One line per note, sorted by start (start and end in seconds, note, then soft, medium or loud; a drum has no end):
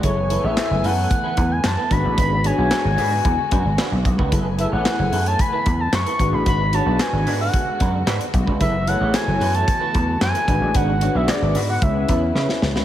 0.00 0.36 F#1 loud
0.00 1.89 E3 medium
0.00 1.89 A3 medium
0.00 8.57 B3 medium
0.00 0.17 E4 medium
0.00 0.18 E4 medium
0.00 0.18 G#4 medium
0.00 0.18 A4 medium
0.00 1.89 G#5 loud
0.00 kick loud
0.00 closed hi-hat medium
0.04 0.18 A4 medium
0.04 0.18 B4 medium
0.04 0.46 C#5 medium
0.30 0.89 E4 medium
0.30 0.41 E4 medium
0.30 0.89 G#4 medium
0.30 0.90 A4 medium
0.30 0.42 A4 medium
0.30 0.90 B4 medium
0.30 0.42 B4 medium
0.30 closed hi-hat medium
0.44 0.54 A1 loud
0.44 0.55 E4 medium
0.44 0.55 A4 medium
0.44 0.55 C#5 medium
0.44 0.87 E5 loud
0.57 snare loud
0.57 clap medium
0.57 closed hi-hat loud
0.70 0.81 F#1 loud
0.70 muted clean electric guitar stroke medium
0.84 1.05 F#2 loud
0.84 0.97 E4 medium
0.84 0.96 A4 loud
0.84 0.97 B4 loud
0.84 1.53 F#5 loud
0.84 open hi-hat medium
0.97 1.09 E4 medium
0.97 1.08 A4 medium
0.97 1.08 C#5 medium
1.10 muted clean electric guitar stroke soft
1.10 kick loud
1.10 closed hi-hat medium
1.24 1.36 E4 medium
1.24 1.36 A4 medium
1.24 1.37 B4 medium
1.37 1.59 E2 medium
1.37 muted clean electric guitar stroke medium
1.37 kick loud
1.37 closed hi-hat medium
1.50 1.67 G#5 loud
1.50 muted clean electric guitar stroke medium
1.64 1.75 F#2 loud
1.64 1.93 A5 loud
1.64 muted clean electric guitar stroke medium
1.64 snare loud
1.64 clap medium
1.64 closed hi-hat medium
1.77 1.89 E4 medium
1.77 1.89 A4 medium
1.77 1.88 B4 medium
1.90 2.02 G#1 loud
1.90 4.30 D3 medium
1.90 4.30 G#3 medium
1.90 2.05 D4 medium
1.90 2.34 D4 medium
1.90 4.30 F#4 loud
1.90 2.34 F#4 medium
1.90 2.04 F#4 medium
1.90 2.34 G#4 medium
1.90 2.34 B4 medium
1.90 2.03 B4 medium
1.90 2.18 B5 loud
1.90 kick medium
1.90 closed hi-hat medium
2.04 2.15 A1 loud
2.04 muted clean electric guitar stroke soft
2.17 2.50 G#1 loud
2.17 2.32 D4 loud
2.17 2.32 F#4 medium
2.17 2.32 B4 loud
2.17 2.47 B5 loud
2.17 kick loud
2.17 closed hi-hat loud
2.44 2.55 D4 medium
2.44 3.04 D4 medium
2.44 3.04 F#4 medium
2.44 2.56 F#4 medium
2.44 3.04 G#4 medium
2.44 3.04 C#5 medium
2.44 2.56 C#5 medium
2.44 4.06 G#5 loud
2.44 closed hi-hat medium
2.58 2.69 B1 medium
2.58 2.69 D4 medium
2.58 2.69 F#4 medium
2.58 2.69 B4 medium
2.71 snare loud
2.71 clap medium
2.71 closed hi-hat medium
2.84 2.95 G#1 loud
2.84 muted clean electric guitar stroke medium
2.98 3.19 G#2 loud
2.98 3.11 D4 medium
2.98 3.11 F#4 medium
2.98 3.10 B4 medium
2.98 open hi-hat medium
3.11 3.23 D4 medium
3.11 3.23 F#4 medium
3.11 3.22 B4 medium
3.25 3.36 E2 medium
3.25 muted clean electric guitar stroke soft
3.25 kick loud
3.25 closed hi-hat medium
3.38 muted clean electric guitar stroke soft
3.51 3.63 F#2 medium
3.51 3.66 D4 medium
3.51 3.64 F#4 loud
3.51 3.64 B4 medium
3.51 kick loud
3.51 closed hi-hat medium
3.65 3.76 G#1 medium
3.65 muted clean electric guitar stroke soft
3.78 3.92 D4 medium
3.78 3.91 F#4 loud
3.78 3.90 B4 loud
3.78 snare loud
3.78 clap medium
3.78 closed hi-hat medium
3.92 4.02 B1 medium
3.92 muted clean electric guitar stroke soft
4.05 4.16 B1 medium
4.05 muted clean electric guitar stroke soft
4.05 kick loud
4.05 closed hi-hat medium
4.18 4.29 C#2 medium
4.18 4.30 D4 soft
4.18 4.30 F#4 medium
4.18 4.29 B4 medium
4.18 kick medium
4.32 4.64 F#1 loud
4.32 6.18 E3 medium
4.32 6.18 A3 medium
4.32 4.46 E4 medium
4.32 4.46 G#4 medium
4.32 4.46 A4 medium
4.32 4.47 A4 medium
4.32 4.47 B4 loud
4.32 4.46 B4 loud
4.32 6.18 G#5 medium
4.32 kick loud
4.32 closed hi-hat loud
4.58 4.70 E4 medium
4.58 5.18 E4 medium
4.58 5.18 G#4 medium
4.58 4.70 A4 medium
4.58 5.18 A4 medium
4.58 5.18 B4 medium
4.58 4.70 B4 medium
4.58 4.66 E5 medium
4.58 closed hi-hat medium
4.72 4.83 A1 medium
4.72 4.84 E4 medium
4.72 4.83 A4 medium
4.72 4.83 C#5 medium
4.72 5.28 F#5 medium
4.85 muted clean electric guitar stroke soft
4.85 snare loud
4.85 clap medium
4.85 closed hi-hat medium
4.99 5.10 F#1 loud
4.99 muted clean electric guitar stroke medium
5.12 5.34 F#2 medium
5.12 5.25 E4 medium
5.12 5.25 A4 medium
5.12 5.25 B4 medium
5.12 open hi-hat medium
5.26 5.37 E4 medium
5.26 5.37 A4 medium
5.26 5.37 C#5 medium
5.26 5.42 A5 loud
5.26 closed hi-hat medium
5.39 5.82 B5 loud
5.39 muted clean electric guitar stroke soft
5.39 kick loud
5.39 closed hi-hat medium
5.52 5.64 E4 medium
5.52 5.65 A4 medium
5.52 5.65 B4 medium
5.66 5.87 E2 loud
5.66 muted clean electric guitar stroke soft
5.66 kick loud
5.66 closed hi-hat medium
5.79 5.95 A5 loud
5.79 muted clean electric guitar stroke soft
5.93 6.03 F#2 loud
5.93 6.35 C#6 loud
5.93 muted clean electric guitar stroke soft
5.93 snare loud
5.93 clap medium
5.93 closed hi-hat medium
6.06 6.18 E4 medium
6.06 6.17 A4 medium
6.06 6.17 B4 medium
6.06 closed hi-hat medium
6.19 6.30 G#1 loud
6.19 8.58 D3 medium
6.19 8.58 G#3 medium
6.19 6.62 D4 medium
6.19 6.34 D4 medium
6.19 8.58 F#4 medium
6.19 6.62 F#4 medium
6.19 6.32 F#4 medium
6.19 6.62 G#4 medium
6.19 6.63 B4 medium
6.19 6.32 B4 medium
6.19 kick medium
6.19 closed hi-hat medium
6.32 6.43 A1 medium
6.32 6.47 B5 loud
6.32 muted clean electric guitar stroke medium
6.46 6.78 G#1 loud
6.46 6.60 D4 medium
6.46 6.61 F#4 loud
6.46 6.61 B4 medium
6.46 6.76 B5 loud
6.46 kick loud
6.46 closed hi-hat medium
6.73 6.84 D4 medium
6.73 7.32 D4 medium
6.73 7.32 F#4 medium
6.73 6.84 F#4 medium
6.73 7.33 G#4 medium
6.73 7.33 B4 loud
6.73 6.85 C#5 medium
6.73 7.02 A5 loud
6.73 closed hi-hat medium
6.86 6.97 B1 loud
6.86 6.98 D4 medium
6.86 6.98 F#4 medium
6.86 6.97 B4 medium
6.99 7.41 G#5 loud
6.99 muted clean electric guitar stroke soft
6.99 snare loud
6.99 clap medium
6.99 closed hi-hat loud
7.13 7.24 G#1 loud
7.13 muted clean electric guitar stroke medium
7.26 7.48 G#2 loud
7.26 7.40 D4 medium
7.26 7.39 F#4 medium
7.26 7.39 B4 loud
7.26 open hi-hat medium
7.40 7.52 D4 medium
7.40 7.51 F#4 medium
7.40 7.51 B4 medium
7.40 8.30 F#5 medium
7.53 muted clean electric guitar stroke soft
7.53 kick loud
7.53 closed hi-hat medium
7.67 muted clean electric guitar stroke medium
7.80 8.02 F#2 loud
7.80 7.94 D4 medium
7.80 7.93 F#4 medium
7.80 7.92 B4 loud
7.80 kick loud
7.80 closed hi-hat medium
7.93 muted clean electric guitar stroke soft
8.06 8.18 G#2 loud
8.06 8.21 D4 medium
8.06 8.20 F#4 medium
8.06 8.19 B4 medium
8.06 snare loud
8.06 clap loud
8.06 closed hi-hat medium
8.20 muted clean electric guitar stroke medium
8.20 closed hi-hat medium
8.33 8.44 B1 loud
8.33 muted clean electric guitar stroke soft
8.33 kick loud
8.33 closed hi-hat medium
8.47 8.58 C#2 medium
8.47 8.59 D4 medium
8.47 8.58 F#4 medium
8.47 8.58 B4 medium
8.47 kick medium
8.60 8.93 F#1 loud
8.60 10.47 E3 medium
8.60 10.46 A3 medium
8.60 10.47 B3 medium
8.60 8.74 E4 medium
8.60 10.47 F#4 medium
8.60 8.74 G#4 medium
8.60 8.75 A4 medium
8.60 8.75 B4 loud
8.60 8.75 B4 medium
8.60 8.89 E5 loud
8.60 kick loud
8.60 closed hi-hat medium
8.87 8.98 E4 medium
8.87 9.47 E4 medium
8.87 9.47 G#4 medium
8.87 8.99 A4 medium
8.87 9.47 A4 medium
8.87 8.99 B4 medium
8.87 9.47 C#5 loud
8.87 9.16 F#5 loud
8.87 closed hi-hat medium
9.00 9.11 A1 loud
9.00 9.12 E4 medium
9.00 9.12 A4 medium
9.00 9.12 C#5 medium
9.14 9.56 G#5 loud
9.14 muted clean electric guitar stroke soft
9.14 snare loud
9.14 clap medium
9.14 closed hi-hat loud
9.27 9.38 F#1 loud
9.27 muted clean electric guitar stroke soft
9.41 9.62 F#2 loud
9.41 9.54 E4 medium
9.41 9.53 A4 medium
9.41 9.53 B4 medium
9.41 open hi-hat medium
9.54 9.66 E4 medium
9.54 9.65 A4 medium
9.54 9.65 C#5 medium
9.54 10.21 A5 loud
9.54 closed hi-hat soft
9.67 muted clean electric guitar stroke soft
9.67 kick loud
9.67 closed hi-hat medium
9.81 9.93 E4 medium
9.81 9.93 A4 medium
9.81 9.94 B4 medium
9.94 10.16 E2 loud
9.94 muted clean electric guitar stroke soft
9.94 kick loud
9.94 closed hi-hat medium
10.08 muted clean electric guitar stroke soft
10.21 10.32 F#2 loud
10.21 10.77 G#5 loud
10.21 muted clean electric guitar stroke soft
10.21 snare loud
10.21 clap medium
10.21 closed hi-hat medium
10.34 10.46 E4 medium
10.34 10.46 A4 medium
10.34 10.46 B4 medium
10.34 closed hi-hat medium
10.48 10.59 G#1 loud
10.48 11.81 D3 medium
10.48 12.85 G#3 medium
10.48 12.85 B3 medium
10.48 10.91 D4 medium
10.48 10.62 D4 medium
10.48 10.91 F#4 medium
10.48 10.61 F#4 medium
10.48 11.81 F#4 medium
10.48 10.91 G#4 medium
10.48 10.91 B4 medium
10.48 10.60 B4 medium
10.48 kick loud
10.48 closed hi-hat medium
10.61 10.72 A1 loud
10.61 muted clean electric guitar stroke soft
10.75 11.07 G#1 loud
10.75 10.89 D4 medium
10.75 10.89 F#4 loud
10.75 10.89 B4 loud
10.75 11.17 F#5 loud
10.75 kick loud
10.75 closed hi-hat loud
11.01 11.61 D4 medium
11.01 11.13 D4 medium
11.01 11.61 F#4 medium
11.01 11.13 F#4 medium
11.01 11.61 G#4 medium
11.01 11.61 B4 medium
11.01 11.13 C#5 medium
11.01 closed hi-hat medium
11.15 11.26 B1 medium
11.15 11.27 D4 soft
11.15 11.26 F#4 medium
11.15 11.26 B4 medium
11.15 11.31 E5 loud
11.28 11.69 D5 medium
11.28 muted clean electric guitar stroke soft
11.28 snare loud
11.28 clap medium
11.28 closed hi-hat loud
11.42 11.52 G#1 loud
11.42 muted clean electric guitar stroke medium
11.55 11.76 G#2 loud
11.55 11.68 D4 medium
11.55 11.68 F#4 loud
11.55 11.67 B4 loud
11.55 open hi-hat medium
11.68 11.80 D4 medium
11.68 11.80 F#4 medium
11.68 11.80 B4 medium
11.68 11.84 F#5 medium
11.82 12.03 C#2 loud
11.82 12.85 C#3 medium
11.82 12.68 C#4 medium
11.82 12.68 E4 medium
11.82 12.85 E4 medium
11.82 12.68 G#4 medium
11.82 12.68 B4 loud
11.82 12.36 E5 medium
11.82 muted clean electric guitar stroke soft
11.82 kick loud
11.82 closed hi-hat medium
11.95 muted clean electric guitar stroke soft
12.09 12.30 E2 loud
12.09 12.23 C#4 loud
12.09 12.22 E4 loud
12.09 12.21 B4 loud
12.09 kick medium
12.09 closed hi-hat medium
12.22 muted clean electric guitar stroke medium
12.35 12.46 C#3 loud
12.35 12.50 C#4 medium
12.35 12.48 E4 medium
12.35 12.48 B4 medium
12.35 snare medium
12.49 muted clean electric guitar stroke medium
12.49 snare medium
12.62 12.73 C#2 loud
12.62 muted clean electric guitar stroke soft
12.62 snare loud
12.75 12.85 C#2 medium
12.75 12.85 C#4 soft
12.75 12.85 E4 medium
12.75 12.85 B4 medium
12.75 snare medium